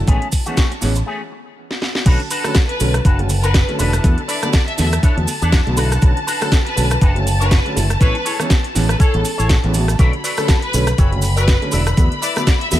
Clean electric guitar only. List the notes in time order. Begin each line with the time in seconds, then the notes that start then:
0.07 A3 C#4 G#4
0.46 A3 C#4 F#4
0.96 muted clean electric guitar stroke
1.06 A3 C#4 G#4
1.32 muted clean electric guitar stroke
2.06 D4 F#4 A4 B4
2.31 D4 F#4 A4 B4
2.80 muted clean electric guitar stroke
3.05 D4 F#4 A4 B4
3.30 muted clean electric guitar stroke
3.43 D4 F#4 A4 B4
3.79 D4 E4 A4 B4
4.28 D4 E4 A4 B4
4.78 muted clean electric guitar stroke
5.03 D4 E4 A4 C#5
5.28 muted clean electric guitar stroke
5.42 D4 E4 A4 D5
5.77 D4 F#4 A4 B4
6.27 D4 F#4 A4 B4
6.77 muted clean electric guitar stroke
7.01 D4 F#4 A4 B4
7.26 muted clean electric guitar stroke
7.40 D4 F#4 A4 C#5
7.76 muted clean electric guitar stroke
8.01 E4 G#4 A4 C#5
8.25 E4 G#4 A4 C#5
8.75 muted clean electric guitar stroke
8.99 E4 G#4 A4 C#5
9.24 muted clean electric guitar stroke
9.38 E4 G#4 A4 C#5
9.74 muted clean electric guitar stroke
9.99 F#4 A4 B4 D5
10.24 F#4 A4 B4 D5
10.74 muted clean electric guitar stroke
10.98 F#4 A4 B4 C#5
11.23 muted clean electric guitar stroke
11.36 F#4 A4 B4 D5
11.72 E4 A4 B4 D5
12.22 E4 A4 B4 E5
12.72 muted clean electric guitar stroke